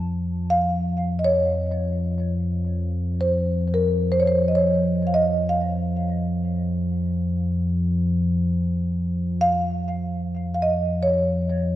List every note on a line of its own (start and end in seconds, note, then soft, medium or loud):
0.00 11.76 F2 medium
0.00 11.76 F3 medium
0.00 0.57 A5 medium
0.50 1.23 F5 medium
1.19 1.27 D#5 medium
1.24 3.27 C#5 medium
3.21 3.77 C5 medium
3.74 4.16 A#4 medium
4.12 4.21 C5 medium
4.20 4.28 C#5 medium
4.27 4.59 C5 medium
4.48 4.57 D#5 soft
4.55 5.10 C#5 medium
5.07 5.16 F5 soft
5.14 5.51 D#5 medium
5.49 8.01 F5 medium
9.41 10.53 F5 medium
10.55 10.61 F5 medium
10.62 11.03 D#5 medium
11.03 11.76 C#5 medium